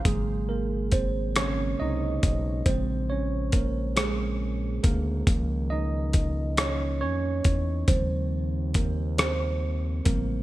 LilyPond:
<<
  \new Staff \with { instrumentName = "Tine electric piano" } { \time 6/8 \key aes \mixolydian \tempo 4. = 46 <aes aes'>8 <bes bes'>8 <c' c''>8 <des' des''>8 <ees' ees''>4 | <c' c''>8 <des' des''>8 <bes bes'>8 <aes aes'>4 <bes bes'>8~ | <bes bes'>8 <ees' ees''>4 <des' des''>8 <des' des''>4 | c''4 <bes bes'>8 <c' c''>4 <bes bes'>8 | }
  \new Staff \with { instrumentName = "Tine electric piano" } { \clef bass \time 6/8 \key aes \mixolydian <des ges bes>4. <des ges bes>8 r4 | <des aes>2. | <ees f bes>4. r4. | <des f g c'>4. r4 <des f g c'>8 | }
  \new Staff \with { instrumentName = "Analog synth bass" } { \clef bass \time 6/8 \key aes \mixolydian aes,,2 c,8 ces,8 | bes,,2~ bes,,8 d,8 | des,2 f,8 fes,8 | ees,2~ ees,8 a,,8 | }
  \new DrumStaff \with { instrumentName = "Drums" } \drummode { \time 6/8 <hh bd>4 <hh bd>8 <hh ss>4 <hh bd>8 | <hh bd>4 <hh bd>8 <hh ss>4 <hh bd>8 | <hh bd>4 <hh bd>8 <hh ss>4 <hh bd>8 | <hh bd>4 <hh bd>8 <hh ss>4 <hh bd>8 | }
>>